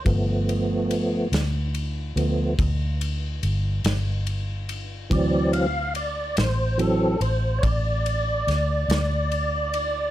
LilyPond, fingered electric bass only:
\new Staff \with { instrumentName = "Fingered electric bass" } { \clef bass \time 12/8 \key g \major \tempo 4. = 48 g,,4. d,4 d,8 d,4 g,,8 g,,4. | d,4. a,,4 a,,8 a,,4 d,8 d,4. | }